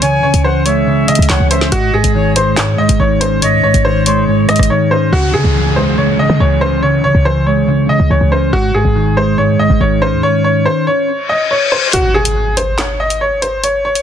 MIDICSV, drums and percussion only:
0, 0, Header, 1, 2, 480
1, 0, Start_track
1, 0, Key_signature, 4, "minor"
1, 0, Tempo, 425532
1, 21, Time_signature, 4, 2, 24, 8
1, 15816, End_track
2, 0, Start_track
2, 0, Title_t, "Drums"
2, 21, Note_on_c, 9, 42, 90
2, 134, Note_off_c, 9, 42, 0
2, 381, Note_on_c, 9, 42, 71
2, 494, Note_off_c, 9, 42, 0
2, 741, Note_on_c, 9, 42, 84
2, 853, Note_off_c, 9, 42, 0
2, 1220, Note_on_c, 9, 42, 63
2, 1301, Note_off_c, 9, 42, 0
2, 1301, Note_on_c, 9, 42, 64
2, 1381, Note_off_c, 9, 42, 0
2, 1381, Note_on_c, 9, 42, 62
2, 1460, Note_on_c, 9, 38, 123
2, 1461, Note_off_c, 9, 42, 0
2, 1461, Note_on_c, 9, 42, 86
2, 1466, Note_on_c, 9, 39, 97
2, 1573, Note_off_c, 9, 38, 0
2, 1574, Note_off_c, 9, 42, 0
2, 1579, Note_off_c, 9, 39, 0
2, 1701, Note_on_c, 9, 42, 87
2, 1813, Note_off_c, 9, 42, 0
2, 1820, Note_on_c, 9, 38, 66
2, 1933, Note_off_c, 9, 38, 0
2, 1941, Note_on_c, 9, 42, 87
2, 2054, Note_off_c, 9, 42, 0
2, 2301, Note_on_c, 9, 42, 76
2, 2414, Note_off_c, 9, 42, 0
2, 2661, Note_on_c, 9, 42, 89
2, 2774, Note_off_c, 9, 42, 0
2, 2901, Note_on_c, 9, 38, 113
2, 2901, Note_on_c, 9, 42, 83
2, 2907, Note_on_c, 9, 39, 94
2, 3014, Note_off_c, 9, 38, 0
2, 3014, Note_off_c, 9, 42, 0
2, 3020, Note_off_c, 9, 39, 0
2, 3261, Note_on_c, 9, 42, 74
2, 3374, Note_off_c, 9, 42, 0
2, 3621, Note_on_c, 9, 42, 87
2, 3734, Note_off_c, 9, 42, 0
2, 3861, Note_on_c, 9, 42, 87
2, 3973, Note_off_c, 9, 42, 0
2, 4221, Note_on_c, 9, 42, 72
2, 4334, Note_off_c, 9, 42, 0
2, 4581, Note_on_c, 9, 42, 86
2, 4693, Note_off_c, 9, 42, 0
2, 5061, Note_on_c, 9, 42, 45
2, 5062, Note_on_c, 9, 37, 93
2, 5141, Note_off_c, 9, 42, 0
2, 5141, Note_on_c, 9, 42, 52
2, 5175, Note_off_c, 9, 37, 0
2, 5182, Note_on_c, 9, 37, 62
2, 5221, Note_off_c, 9, 42, 0
2, 5221, Note_on_c, 9, 42, 57
2, 5294, Note_off_c, 9, 37, 0
2, 5334, Note_off_c, 9, 42, 0
2, 13460, Note_on_c, 9, 42, 86
2, 13573, Note_off_c, 9, 42, 0
2, 13820, Note_on_c, 9, 42, 72
2, 13933, Note_off_c, 9, 42, 0
2, 14180, Note_on_c, 9, 42, 83
2, 14293, Note_off_c, 9, 42, 0
2, 14420, Note_on_c, 9, 38, 111
2, 14420, Note_on_c, 9, 42, 80
2, 14426, Note_on_c, 9, 39, 90
2, 14533, Note_off_c, 9, 38, 0
2, 14533, Note_off_c, 9, 42, 0
2, 14539, Note_off_c, 9, 39, 0
2, 14781, Note_on_c, 9, 42, 71
2, 14894, Note_off_c, 9, 42, 0
2, 15141, Note_on_c, 9, 42, 85
2, 15254, Note_off_c, 9, 42, 0
2, 15381, Note_on_c, 9, 42, 87
2, 15494, Note_off_c, 9, 42, 0
2, 15741, Note_on_c, 9, 42, 74
2, 15816, Note_off_c, 9, 42, 0
2, 15816, End_track
0, 0, End_of_file